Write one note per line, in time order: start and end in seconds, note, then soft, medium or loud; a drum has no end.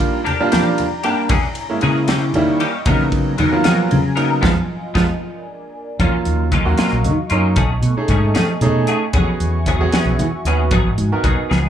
0.00 1.27 D#3 medium
0.00 0.19 G3 medium
0.00 0.19 A#3 medium
0.00 0.18 D4 medium
0.00 0.18 F4 loud
0.00 1.29 D5 medium
0.00 1.29 G5 medium
0.00 2.06 A#5 medium
0.00 kick medium
0.00 ride medium
0.00 low conga soft
0.24 0.41 A#3 medium
0.24 0.41 D4 medium
0.24 0.42 G4 medium
0.24 ride medium
0.24 low conga medium
0.40 0.84 G3 loud
0.40 0.84 A#3 medium
0.40 0.84 D4 medium
0.40 0.84 F4 loud
0.40 low conga soft
0.52 0.68 A#3 medium
0.52 0.68 D4 medium
0.52 0.68 G4 medium
0.52 snare loud
0.52 ride medium
0.52 high conga medium
0.52 low conga soft
0.78 ride medium
0.78 low conga medium
1.03 1.31 G3 medium
1.03 1.30 A#3 medium
1.03 1.20 D4 medium
1.03 1.31 D4 medium
1.03 1.20 G4 medium
1.03 1.30 G4 medium
1.03 ride medium
1.29 1.46 E3 medium
1.29 1.46 A#3 loud
1.29 1.46 C#4 loud
1.29 2.85 E4 medium
1.29 1.46 G#4 loud
1.29 2.08 C#5 medium
1.29 2.08 G#5 medium
1.29 kick loud
1.29 ride medium
1.29 high conga medium
1.29 low conga medium
1.55 ride medium
1.55 low conga soft
1.69 2.09 G#3 medium
1.69 2.09 A#3 medium
1.69 2.09 C#4 medium
1.69 2.09 E4 medium
1.81 2.31 C#3 medium
1.81 1.98 E3 medium
1.81 1.98 A#3 medium
1.81 1.98 C#4 medium
1.81 1.98 G#4 medium
1.81 ride medium
1.96 low conga soft
2.08 2.24 E3 medium
2.08 2.24 A#3 medium
2.08 2.24 C#4 medium
2.08 2.24 G4 medium
2.08 2.86 D#5 medium
2.08 2.86 G5 medium
2.08 2.86 C#6 medium
2.08 snare loud
2.08 ride medium
2.08 high conga medium
2.08 low conga soft
2.34 2.60 D#3 medium
2.34 2.70 G3 medium
2.34 2.70 A#3 medium
2.34 2.70 C#4 medium
2.34 2.70 E4 loud
2.34 ride medium
2.34 low conga medium
2.60 2.76 A#3 soft
2.60 2.76 C#4 medium
2.60 2.76 G4 medium
2.60 ride medium
2.86 3.36 C#3 medium
2.86 3.02 F#3 medium
2.86 4.42 F#3 medium
2.86 3.31 F#3 medium
2.86 3.31 A#3 medium
2.86 3.02 B3 medium
2.86 3.31 B3 medium
2.86 3.02 D#4 medium
2.86 3.31 D#4 medium
2.86 3.03 A#4 medium
2.86 5.19 G#5 medium
2.86 4.41 A#5 medium
2.86 kick loud
2.86 ride medium
2.86 high conga medium
2.86 low conga medium
3.12 kick medium
3.12 ride medium
3.12 low conga soft
3.38 3.65 D#3 loud
3.38 3.54 F#3 medium
3.38 3.54 B3 medium
3.38 3.55 D#4 medium
3.38 3.54 A#4 medium
3.38 ride medium
3.38 low conga loud
3.52 3.95 F#3 medium
3.52 3.96 A#3 medium
3.52 3.96 B3 medium
3.52 3.96 F4 medium
3.52 low conga soft
3.64 3.80 F#3 medium
3.64 3.80 B3 medium
3.64 3.80 D#4 medium
3.64 3.80 A#4 medium
3.64 snare loud
3.64 ride medium
3.64 high conga medium
3.64 low conga soft
3.91 4.40 C#3 medium
3.91 ride medium
3.91 low conga loud
4.16 4.43 F#3 medium
4.16 4.43 A#3 medium
4.16 4.32 B3 soft
4.16 4.41 B3 medium
4.16 4.32 D#4 medium
4.16 4.43 D#4 medium
4.16 4.32 A#4 medium
4.16 ride medium
4.41 4.53 F2 loud
4.41 4.51 F3 loud
4.41 4.51 G#3 loud
4.41 4.50 B3 loud
4.41 4.51 B3 loud
4.41 4.51 D#4 medium
4.41 4.51 F4 loud
4.41 5.21 F4 medium
4.41 5.21 D#5 medium
4.41 kick loud
4.41 snare loud
4.41 high conga loud
4.95 5.05 F2 loud
4.95 5.04 F3 loud
4.95 5.04 G#3 loud
4.95 5.04 B3 loud
4.95 5.03 D#4 loud
4.95 5.03 F4 medium
4.95 kick medium
4.95 snare loud
4.95 high conga loud
5.21 6.00 A#4 medium
5.21 5.99 D5 medium
5.21 5.99 G#5 medium
5.99 6.11 D#2 loud
5.99 6.15 F#3 medium
5.99 6.44 F#3 medium
5.99 7.56 F#3 medium
5.99 6.44 A#3 medium
5.99 6.16 A#3 medium
5.99 6.16 C#4 medium
5.99 6.44 C#4 medium
5.99 6.44 F4 medium
5.99 6.16 F4 medium
5.99 7.56 D#5 medium
5.99 7.56 F5 medium
5.99 9.12 C#6 medium
5.99 kick loud
5.99 closed hi-hat medium
5.99 high conga medium
5.99 low conga medium
6.13 muted fretless electric bass stroke soft
6.25 6.61 D#2 medium
6.25 closed hi-hat medium
6.52 6.68 F#3 medium
6.52 6.68 A#3 medium
6.52 6.68 C#4 medium
6.52 6.68 F4 medium
6.52 kick medium
6.52 closed hi-hat medium
6.52 low conga medium
6.65 6.77 D#2 medium
6.65 7.09 F#3 medium
6.65 7.09 A#3 medium
6.65 7.09 C#4 medium
6.65 7.09 F#4 medium
6.65 low conga soft
6.78 6.94 F#3 medium
6.78 6.94 A#3 medium
6.78 6.94 C#4 medium
6.78 6.94 F4 medium
6.78 muted fretless electric bass stroke soft
6.78 snare loud
6.78 closed hi-hat medium
6.78 high conga medium
6.78 low conga soft
6.92 7.07 A#1 medium
7.04 7.16 D#3 medium
7.04 closed hi-hat medium
7.04 low conga medium
7.30 7.54 F#2 medium
7.30 7.58 F#3 medium
7.30 7.47 A#3 soft
7.30 7.58 A#3 medium
7.30 7.46 C#4 medium
7.30 7.58 C#4 medium
7.30 7.57 D#4 medium
7.30 7.46 F4 medium
7.30 closed hi-hat medium
7.56 7.68 B1 loud
7.56 7.72 D#3 medium
7.56 7.72 A3 medium
7.56 9.13 A3 medium
7.56 7.72 C#4 medium
7.56 7.73 G#4 loud
7.56 9.13 D#5 medium
7.56 11.47 G#5 medium
7.56 kick loud
7.56 closed hi-hat medium
7.56 high conga medium
7.56 low conga medium
7.69 7.81 B1 medium
7.82 7.94 B2 medium
7.82 closed hi-hat medium
7.82 low conga soft
7.96 8.41 A3 medium
7.96 8.41 C#4 medium
7.96 8.41 D#4 medium
7.96 8.41 G#4 medium
7.96 muted fretless electric bass stroke soft
8.08 8.32 G#2 medium
8.08 8.25 D#3 medium
8.08 8.25 A3 medium
8.08 8.26 C#4 medium
8.08 8.26 G#4 medium
8.08 kick medium
8.08 closed hi-hat medium
8.08 low conga medium
8.25 low conga soft
8.34 8.51 D#3 medium
8.34 8.51 A3 medium
8.34 8.51 C#4 medium
8.34 8.51 G#4 medium
8.34 snare loud
8.34 closed hi-hat medium
8.34 high conga medium
8.34 low conga soft
8.61 8.85 B2 medium
8.61 8.97 A3 loud
8.61 8.97 C#4 medium
8.61 8.97 D#4 medium
8.61 8.97 G#4 loud
8.61 8.87 D#5 medium
8.61 closed hi-hat medium
8.61 low conga medium
8.87 9.04 A3 soft
8.87 9.04 C#4 medium
8.87 9.04 G#4 medium
8.87 9.13 F#5 medium
8.87 closed hi-hat medium
9.13 9.26 E2 loud
9.13 9.30 F#3 medium
9.13 9.30 B3 medium
9.13 9.59 B3 medium
9.13 9.30 C#4 medium
9.13 9.59 C#4 medium
9.13 9.59 F#4 medium
9.13 11.49 F#4 medium
9.13 9.30 G#4 medium
9.13 9.59 G#4 medium
9.13 10.71 E5 medium
9.13 10.71 C#6 medium
9.13 kick loud
9.13 closed hi-hat medium
9.13 high conga medium
9.13 low conga medium
9.26 muted fretless electric bass stroke soft
9.40 9.75 E2 medium
9.40 closed hi-hat medium
9.40 low conga soft
9.66 9.83 F#3 medium
9.66 9.83 B3 medium
9.66 9.83 C#4 medium
9.66 9.83 G#4 medium
9.66 kick medium
9.66 closed hi-hat medium
9.66 low conga loud
9.79 9.91 E2 medium
9.79 10.24 B3 medium
9.79 10.25 C#4 medium
9.79 10.24 F#4 medium
9.79 10.24 G#4 loud
9.79 low conga soft
9.92 10.10 F#3 medium
9.92 10.09 B3 medium
9.92 10.09 C#4 medium
9.92 10.09 G#4 medium
9.92 snare loud
9.92 closed hi-hat medium
9.92 high conga medium
9.92 low conga soft
10.05 10.20 B1 medium
10.18 10.30 E3 medium
10.18 closed hi-hat medium
10.18 low conga medium
10.45 10.69 D#2 medium
10.45 10.73 B3 medium
10.45 10.62 B3 soft
10.45 10.62 C#4 medium
10.45 10.73 C#4 medium
10.45 10.73 F#4 medium
10.45 10.62 G#4 medium
10.45 10.73 B4 medium
10.45 closed hi-hat medium
10.71 10.83 G#1 medium
10.71 10.88 F#3 medium
10.71 10.88 B3 medium
10.71 10.88 D#4 medium
10.71 10.88 G#4 loud
10.71 11.51 D#5 medium
10.71 kick loud
10.71 closed hi-hat medium
10.71 high conga medium
10.71 low conga medium
10.85 10.97 G#1 medium
10.85 low conga soft
10.98 11.10 G#2 medium
10.98 closed hi-hat medium
11.11 11.51 B3 medium
11.11 11.51 D#4 medium
11.11 11.51 F#4 medium
11.11 11.51 A#4 medium
11.11 muted fretless electric bass stroke soft
11.11 low conga soft
11.24 11.36 B1 medium
11.24 11.40 F#3 medium
11.24 11.40 B3 medium
11.24 11.41 D#4 medium
11.24 11.41 G#4 medium
11.24 kick medium
11.24 closed hi-hat medium
11.24 low conga medium
11.49 11.69 C#2 medium
11.49 11.67 F3 medium
11.49 11.66 B3 medium
11.49 11.66 D#4 medium
11.49 11.69 F4 medium
11.49 11.66 G#4 medium
11.49 11.69 C#5 medium
11.49 11.69 C#6 medium
11.49 snare medium
11.49 high conga medium